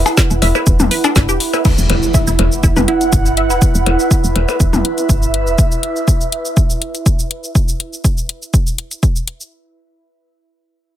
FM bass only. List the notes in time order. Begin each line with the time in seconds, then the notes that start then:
0.31 E1
0.42 E1
0.67 E1
0.80 E1
1.16 F#1
1.29 E1
1.78 E1
1.90 E1
2.27 E1
2.39 E1
2.63 E1
2.77 E1
3.13 G1
3.50 E1
3.75 E1
3.86 E1
4.24 E1
4.36 E1
4.60 E1
4.73 E1
5.09 G1
5.47 E1